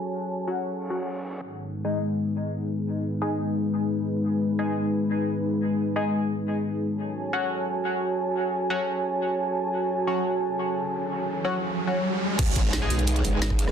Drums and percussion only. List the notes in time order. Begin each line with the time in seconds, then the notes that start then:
12.39 kick, closed hi-hat, crash
12.56 kick, snare, closed hi-hat
12.65 snare
12.73 snare, closed hi-hat
12.90 closed hi-hat
12.99 closed hi-hat
13.07 closed hi-hat
13.16 closed hi-hat
13.24 closed hi-hat
13.42 snare, closed hi-hat
13.50 kick, cross-stick
13.59 closed hi-hat
13.66 cross-stick, snare